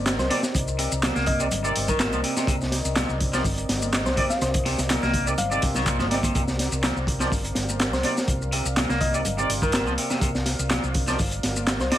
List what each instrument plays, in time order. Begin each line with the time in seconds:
Already playing: fingered electric bass G1, analog synth pad C4 A#4 D5 D#5
0.06 snare, clap, closed hi-hat, shaker
0.19 fingered electric bass C2, synth pluck C5, snare, low conga, shaker
0.30 clean electric guitar C3, brass ensemble C4 D#4 A#4 D5, snare, closed hi-hat, open hi-hat, high conga
0.43 snare, shaker
0.55 fingered electric bass C2, kick, closed hi-hat, shaker
0.68 shaker
0.79 clean electric guitar C3, closed hi-hat, open hi-hat
0.92 fingered electric bass C2, shaker
1.03 clean electric guitar A#2, snare, clap, closed hi-hat, low conga, shaker
1.16 fingered electric bass C2, clean electric guitar A#3, snare, high conga, shaker
1.26 synth pluck D#5, kick, closed hi-hat, open hi-hat
1.40 clean electric guitar C3, brass ensemble C4 D#4 A#4 D5, shaker
1.51 fingered electric bass G1, closed hi-hat, low conga, shaker
1.64 clean electric guitar C3, brass ensemble C4 D#4 A#4 D5, shaker
1.76 fingered electric bass G1, closed hi-hat, open hi-hat
1.88 clean electric guitar D#3, synth pluck A#4, kick, low conga, shaker
1.99 clean electric guitar A#2, synth pluck A#4, snare, clap, closed hi-hat, shaker
2.13 fingered electric bass C2, clean electric guitar F3, high conga, shaker
2.24 clean electric guitar C3, closed hi-hat, open hi-hat
2.36 clean electric guitar C3, snare, high conga, shaker
2.47 fingered electric bass C2, clean electric guitar C3, kick, closed hi-hat, shaker
2.61 snare, shaker
2.72 snare, closed hi-hat, open hi-hat
2.85 fingered electric bass C2, shaker
2.96 clean electric guitar A#2, snare, clap, closed hi-hat, low conga, shaker
3.09 fingered electric bass C2, shaker
3.21 kick, closed hi-hat, open hi-hat
3.33 clean electric guitar F3, brass ensemble C4 D#4 A#4 D5, snare, shaker
3.44 fingered electric bass G1, kick, open hi-hat, shaker
3.58 closed hi-hat, shaker
3.69 fingered electric bass G1, snare, closed hi-hat, open hi-hat
3.82 high conga, shaker
3.93 snare, clap, closed hi-hat, shaker
4.06 fingered electric bass C2, synth pluck C5, snare, low conga, shaker
4.17 clean electric guitar C3, brass ensemble C4 D#4 A#4 D5, kick, closed hi-hat, open hi-hat, high conga
4.30 synth pluck F5, snare, shaker
4.41 fingered electric bass C2, synth pluck C5, snare, closed hi-hat, shaker
4.54 kick, closed hi-hat, shaker
4.65 clean electric guitar C3, snare, open hi-hat
4.78 fingered electric bass C2, snare, closed hi-hat, shaker
4.90 clean electric guitar A#2, snare, clap, closed hi-hat, low conga, shaker
5.02 fingered electric bass C2, clean electric guitar A#3, snare, high conga, shaker
5.14 kick, closed hi-hat, open hi-hat
5.27 clean electric guitar C3, brass ensemble C4 D#4 A#4 D5, shaker
5.38 fingered electric bass G1, synth pluck F5, closed hi-hat, low conga, shaker
5.51 clean electric guitar C3, brass ensemble C4 D#4 A#4 D5, shaker
5.62 fingered electric bass C2, kick, closed hi-hat, open hi-hat
5.75 clean electric guitar D#3, snare, low conga, shaker
5.86 clean electric guitar A#2, kick, clap, closed hi-hat, shaker
5.99 fingered electric bass G1, clean electric guitar F3, snare, high conga, shaker
6.10 clean electric guitar C3, brass ensemble C4 D#4 A#4 D5, snare, closed hi-hat, open hi-hat
6.23 clean electric guitar C3, kick, closed hi-hat, high conga, shaker
6.35 fingered electric bass C2, clean electric guitar C3, analog synth pad F5, kick, closed hi-hat, shaker
6.48 snare, shaker
6.59 snare, closed hi-hat, open hi-hat
6.72 fingered electric bass C2, shaker
6.83 clean electric guitar A#2, snare, clap, closed hi-hat, low conga, shaker
6.96 fingered electric bass C2, shaker
7.07 kick, closed hi-hat, open hi-hat
7.20 clean electric guitar F3, brass ensemble C4 D#4 A#4 D5, snare, shaker
7.31 fingered electric bass G1, kick, open hi-hat, shaker
7.44 closed hi-hat, shaker
7.55 fingered electric bass G1, snare, closed hi-hat, open hi-hat
7.69 high conga, shaker
7.79 snare, clap, closed hi-hat, shaker
7.93 fingered electric bass C2, synth pluck C5, snare, low conga, shaker
8.03 clean electric guitar C3, brass ensemble C4 D#4 A#4 D5, snare, closed hi-hat, open hi-hat, high conga
8.18 snare, shaker
8.28 fingered electric bass C2, kick, closed hi-hat, shaker
8.42 shaker
8.52 clean electric guitar C3, closed hi-hat, open hi-hat
8.65 fingered electric bass C2, shaker
8.76 clean electric guitar A#2, snare, clap, closed hi-hat, low conga, shaker
8.89 fingered electric bass C2, clean electric guitar A#3, snare, high conga, shaker
9.01 synth pluck D#5, kick, closed hi-hat, open hi-hat
9.14 clean electric guitar C3, brass ensemble C4 D#4 A#4 D5, shaker
9.25 fingered electric bass G1, closed hi-hat, low conga, shaker
9.38 clean electric guitar C3, brass ensemble C4 D#4 A#4 D5, shaker
9.49 fingered electric bass G1, closed hi-hat, open hi-hat
9.62 clean electric guitar D#3, synth pluck A#4, kick, low conga, shaker
9.72 clean electric guitar A#2, synth pluck A#4, snare, clap, closed hi-hat, shaker
9.86 fingered electric bass C2, clean electric guitar F3, high conga, shaker
9.98 clean electric guitar C3, closed hi-hat, open hi-hat
10.10 clean electric guitar C3, snare, high conga, shaker
10.21 fingered electric bass C2, clean electric guitar C3, kick, closed hi-hat, shaker
10.35 snare, shaker
10.46 snare, closed hi-hat, open hi-hat
10.59 fingered electric bass C2, shaker
10.70 clean electric guitar A#2, snare, clap, closed hi-hat, low conga, shaker
10.83 fingered electric bass C2, shaker
10.94 kick, closed hi-hat, open hi-hat
11.08 clean electric guitar F3, brass ensemble C4 D#4 A#4 D5, snare, shaker
11.19 fingered electric bass G1, kick, open hi-hat, shaker
11.31 closed hi-hat, shaker
11.43 fingered electric bass G1, snare, closed hi-hat, open hi-hat
11.56 high conga, shaker
11.67 snare, clap, closed hi-hat, shaker
11.80 fingered electric bass C2, synth pluck C5, snare, low conga, shaker
11.91 clean electric guitar C3, brass ensemble C4 D#4 A#4 D5, snare, closed hi-hat, open hi-hat, high conga